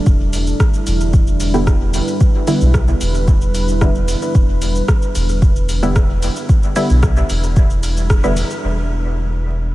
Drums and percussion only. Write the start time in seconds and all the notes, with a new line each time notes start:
0.06 kick, shaker
0.33 open hi-hat, shaker
0.47 shaker
0.60 kick, cross-stick, shaker
0.74 shaker
0.87 open hi-hat, shaker
1.00 shaker
1.13 kick, shaker
1.27 shaker
1.40 open hi-hat, shaker
1.54 shaker
1.67 kick, cross-stick, shaker
1.94 open hi-hat, shaker
2.08 shaker
2.21 kick, shaker
2.47 open hi-hat, shaker
2.61 shaker
2.74 kick, cross-stick, shaker
2.88 shaker
3.01 open hi-hat, shaker
3.15 shaker
3.28 kick, shaker
3.41 shaker
3.55 open hi-hat, shaker
3.68 shaker
3.81 kick, cross-stick, shaker
3.95 shaker
4.08 open hi-hat, shaker
4.22 shaker
4.35 kick, shaker
4.62 open hi-hat, shaker
4.75 shaker
4.88 kick, cross-stick, shaker
5.02 shaker
5.15 open hi-hat, shaker
5.29 shaker
5.42 kick, shaker
5.56 shaker
5.69 open hi-hat, shaker
5.83 shaker
5.96 kick, cross-stick, shaker
6.22 open hi-hat, shaker
6.36 shaker
6.49 kick, shaker
6.63 shaker
6.76 open hi-hat, shaker
6.90 shaker
7.03 kick, cross-stick, shaker
7.17 shaker
7.30 open hi-hat, shaker
7.43 shaker
7.56 kick, shaker
7.70 shaker
7.83 open hi-hat, shaker
7.97 shaker
8.10 kick, cross-stick, shaker
8.24 shaker
8.37 open hi-hat, shaker
8.51 shaker